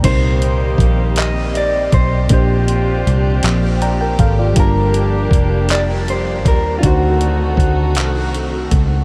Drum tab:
CC |x-----|------|------|------|
HH |xxxxxx|xxxxxx|xxxxxx|xxxxxx|
CP |---x--|---x--|---x--|---x--|
BD |o-o--o|o----o|o-o--o|o-o--o|